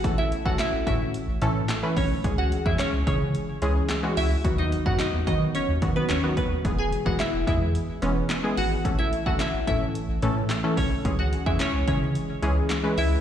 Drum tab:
HH |x-x-x-x-x-x-x-o-|x-x-x-x-x-x-x-o-|x-x-x-x-x-x-x-x-|x-x-x-x-x-x-x-o-|
CP |----x-------x---|----x-------x---|----x-------x---|----x-------x---|
SD |----o-------o---|----o-------o---|----o-------o---|----o-------o---|
BD |o--o--o-------o-|o--o--o---------|o--o--o---o---o-|o--o--o---------|

HH |x-x-x-x-x-x-x-o-|x-x-x-x-x-x-x-o-|
CP |----x-------x---|----x-------x---|
SD |----o-------o---|----o-------o---|
BD |o--o--o-------o-|o--o--o---------|